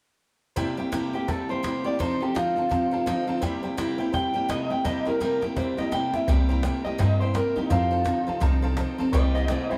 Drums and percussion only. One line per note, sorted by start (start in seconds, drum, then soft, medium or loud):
0.57 cajon bass medium
0.57 cajon slap soft
0.78 cajon slap soft
0.93 cajon slap loud
1.14 cajon slap soft
1.21 cajon slap soft
1.28 cajon bass loud
1.28 cajon slap soft
1.50 cajon slap soft
1.64 cajon slap loud
1.86 cajon slap soft
1.93 cajon slap soft
2.00 cajon bass loud
2.00 cajon slap soft
2.22 cajon slap soft
2.36 cajon slap loud
2.58 cajon slap soft
2.65 cajon slap soft
2.71 cajon bass loud
2.71 cajon slap soft
2.93 cajon slap soft
3.07 cajon slap loud
3.29 cajon slap soft
3.35 cajon slap soft
3.43 cajon bass loud
3.43 cajon slap soft
3.64 cajon slap soft
3.78 cajon slap loud
4.00 cajon slap soft
4.07 cajon slap soft
4.14 cajon bass loud
4.14 cajon slap soft
4.35 cajon slap soft
4.50 cajon slap loud
4.71 cajon slap soft
4.78 cajon slap soft
4.85 cajon bass loud
4.85 cajon slap medium
5.07 cajon slap medium
5.21 cajon slap medium
5.42 cajon slap medium
5.57 cajon bass loud
5.57 cajon slap medium
5.78 cajon slap medium
5.92 cajon slap medium
6.14 cajon slap medium
6.27 cajon bass loud
6.27 cajon slap soft
6.63 cajon slap loud
6.85 cajon slap soft
6.99 cajon bass loud
6.99 cajon slap soft
7.28 cajon slap soft
7.35 cajon slap loud
7.57 cajon slap soft
7.71 cajon bass loud
7.71 cajon slap soft
7.92 cajon slap soft
7.99 cajon slap soft
8.06 cajon slap loud
8.27 cajon slap soft
8.41 cajon bass loud
8.41 cajon slap soft
8.63 cajon slap soft
8.70 cajon slap soft
8.77 cajon slap loud
8.99 cajon slap soft
9.13 cajon bass loud
9.13 cajon slap soft
9.34 cajon slap soft
9.42 cajon slap soft
9.48 cajon slap loud
9.70 cajon slap soft